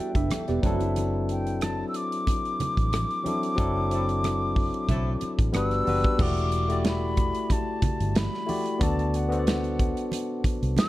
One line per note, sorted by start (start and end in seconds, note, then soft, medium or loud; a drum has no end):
0.00 0.65 G3 medium
0.00 0.65 B3 medium
0.00 0.64 D4 medium
0.00 0.65 E4 medium
0.00 0.15 F#4 medium
0.00 0.65 A4 medium
0.00 0.15 D5 medium
0.00 0.15 E5 soft
0.00 0.15 G5 medium
0.15 0.27 F#1 medium
0.15 0.30 D4 medium
0.15 0.30 B4 medium
0.15 0.47 E5 medium
0.15 kick medium
0.15 closed hi-hat soft
0.30 0.47 A4 medium
0.30 cross-stick loud
0.30 closed hi-hat medium
0.30 high conga medium
0.48 0.61 E1 medium
0.48 0.63 B3 medium
0.48 0.63 G4 medium
0.48 0.79 B4 soft
0.48 0.79 D5 medium
0.48 cross-stick soft
0.48 closed hi-hat soft
0.62 1.82 F#1 medium
0.62 1.68 F#3 medium
0.62 0.80 A3 medium
0.62 1.69 C4 medium
0.62 1.69 D4 medium
0.62 1.69 E4 medium
0.62 0.80 F#4 medium
0.62 1.70 A4 loud
0.62 kick loud
0.62 closed hi-hat medium
0.62 high conga medium
0.80 1.75 E4 medium
0.80 closed hi-hat soft
0.96 closed hi-hat medium
0.96 muted conga soft
1.29 1.64 G5 medium
1.29 closed hi-hat medium
1.47 closed hi-hat soft
1.61 1.88 A5 medium
1.61 cross-stick medium
1.61 closed hi-hat medium
1.61 high conga medium
1.89 1.98 E6 medium
1.94 5.33 D6 loud
1.94 closed hi-hat medium
2.12 closed hi-hat soft
2.27 kick medium
2.27 closed hi-hat medium
2.27 muted conga soft
2.45 closed hi-hat soft
2.60 muted fingered electric bass stroke soft
2.60 closed hi-hat medium
2.60 muted conga soft
2.60 low conga medium
2.77 3.04 A1 medium
2.77 kick medium
2.77 closed hi-hat soft
2.93 cross-stick loud
2.93 closed hi-hat medium
2.93 high conga medium
3.11 closed hi-hat soft
3.24 3.47 F#3 medium
3.24 3.48 C4 medium
3.24 3.48 D4 medium
3.24 3.49 E4 medium
3.24 3.49 A4 medium
3.24 closed hi-hat medium
3.24 high conga medium
3.43 closed hi-hat soft
3.55 4.70 F#1 medium
3.55 4.47 F#3 medium
3.55 4.47 C4 medium
3.55 4.48 D4 medium
3.55 4.48 E4 medium
3.55 4.49 A4 medium
3.55 kick loud
3.55 closed hi-hat medium
3.55 muted conga soft
3.91 4.06 A3 medium
3.91 4.06 C4 medium
3.91 4.06 E4 medium
3.91 closed hi-hat medium
4.09 closed hi-hat soft
4.24 cross-stick medium
4.24 closed hi-hat medium
4.24 high conga medium
4.56 kick medium
4.56 open hi-hat soft
4.74 closed hi-hat soft
4.89 5.15 B1 loud
4.89 5.10 A3 medium
4.89 5.10 C4 medium
4.89 5.10 E4 medium
4.89 kick medium
4.89 closed hi-hat medium
4.89 muted conga soft
4.89 low conga medium
5.21 muted fingered electric bass stroke soft
5.21 closed hi-hat medium
5.21 muted conga soft
5.39 5.51 A1 medium
5.39 kick medium
5.39 closed hi-hat medium
5.52 5.80 G1 medium
5.52 5.80 G3 medium
5.52 5.80 B3 medium
5.52 5.81 D4 medium
5.52 5.81 F#4 medium
5.52 5.82 B4 medium
5.52 cross-stick loud
5.52 closed hi-hat medium
5.52 high conga medium
5.58 6.24 E6 loud
5.71 cross-stick soft
5.71 closed hi-hat soft
5.85 6.01 F#1 medium
5.85 6.09 G3 medium
5.85 6.10 B3 medium
5.85 6.10 D4 medium
5.85 6.11 F#4 medium
5.85 6.11 B4 medium
5.85 open hi-hat soft
5.85 high conga medium
6.04 kick medium
6.04 closed hi-hat soft
6.17 7.31 E1 medium
6.17 6.52 A3 medium
6.17 6.53 E4 medium
6.17 6.53 F#4 medium
6.17 6.54 G4 medium
6.17 kick loud
6.17 crash medium
6.17 muted conga soft
6.22 6.54 D5 medium
6.22 6.86 D6 loud
6.37 closed hi-hat soft
6.52 closed hi-hat medium
6.68 7.58 A3 medium
6.68 7.58 E4 medium
6.68 7.59 F#4 medium
6.68 7.59 G4 medium
6.68 closed hi-hat soft
6.72 7.60 D5 medium
6.85 7.54 B5 medium
6.85 snare medium
6.85 closed hi-hat medium
6.85 high conga medium
7.17 kick medium
7.17 closed hi-hat medium
7.35 closed hi-hat soft
7.50 8.19 A5 medium
7.50 kick medium
7.50 closed hi-hat medium
7.50 muted conga soft
7.82 muted fingered electric bass stroke soft
7.82 kick medium
7.82 closed hi-hat medium
7.82 muted conga soft
7.82 low conga medium
8.00 8.27 G1 medium
8.00 closed hi-hat medium
8.15 8.84 B5 loud
8.15 snare loud
8.15 closed hi-hat medium
8.15 high conga medium
8.34 snare soft
8.46 8.70 A3 medium
8.46 8.71 E4 medium
8.46 8.71 F#4 medium
8.46 8.72 G4 medium
8.46 8.72 D5 medium
8.46 open hi-hat medium
8.46 high conga medium
8.66 closed hi-hat soft
8.79 9.93 D2 loud
8.79 9.14 B3 medium
8.79 9.14 D4 medium
8.79 9.15 F#4 medium
8.79 9.15 A4 medium
8.79 9.16 D5 medium
8.79 9.17 A5 medium
8.79 kick loud
8.79 closed hi-hat medium
8.79 muted conga soft
8.99 closed hi-hat soft
9.14 10.45 F#5 medium
9.14 closed hi-hat medium
9.28 10.19 B3 medium
9.28 10.20 D4 medium
9.28 10.20 F#4 medium
9.28 10.20 A4 medium
9.28 closed hi-hat soft
9.33 9.38 C5 medium
9.39 10.24 D5 medium
9.47 snare medium
9.47 closed hi-hat medium
9.47 high conga medium
9.64 closed hi-hat soft
9.79 kick medium
9.79 closed hi-hat medium
9.97 closed hi-hat soft
10.12 closed hi-hat medium
10.12 muted conga soft
10.44 muted fingered electric bass stroke soft
10.44 kick medium
10.44 closed hi-hat medium
10.44 muted conga soft
10.63 10.74 C2 medium
10.63 closed hi-hat medium
10.77 10.89 E6 loud
10.77 snare loud
10.77 closed hi-hat medium
10.77 high conga medium